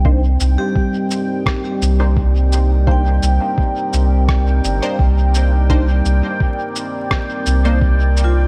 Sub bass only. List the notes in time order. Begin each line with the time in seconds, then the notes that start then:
Already playing: C2
0.41 C2
1.82 C2
3.23 C2
3.93 C2
4.64 G1
4.99 C2
6.05 C2
7.46 C2